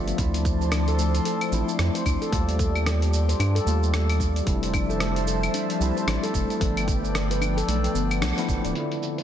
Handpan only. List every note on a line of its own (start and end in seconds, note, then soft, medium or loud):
0.07 0.14 F4 medium
0.18 0.33 D4 medium
0.61 0.71 C5 medium
0.72 0.87 D4 loud
0.88 0.98 A4 loud
0.99 1.24 A3 medium
1.25 1.51 A4 medium
1.52 1.67 D4 medium
1.95 2.05 C5 medium
2.06 2.21 D4 loud
2.22 2.32 A4 loud
2.32 2.58 A3 medium
2.59 2.85 A4 medium
2.86 3.01 D4 medium
3.29 3.39 C5 medium
3.40 3.55 D4 loud
3.55 3.66 A4 loud
3.66 3.92 A3 medium
3.93 4.19 A4 medium
4.20 4.35 D4 medium
4.63 4.73 C5 medium
4.73 4.89 D4 loud
4.90 5.00 A4 medium
5.01 5.26 A3 medium
5.27 5.53 A4 medium
5.54 5.69 D4 medium
5.97 6.07 C5 medium
6.07 6.23 D4 loud
6.23 6.34 A4 loud
6.34 6.60 A3 medium
6.61 6.87 A4 medium
6.88 7.03 D4 medium
7.30 7.41 B4 medium
7.41 7.56 D4 loud
7.57 7.68 A4 loud
7.68 7.83 A3 medium
7.95 8.09 B3 loud
8.22 8.36 D4 loud
8.65 8.71 D5 medium
8.76 8.91 D4 medium
9.18 9.23 C5 medium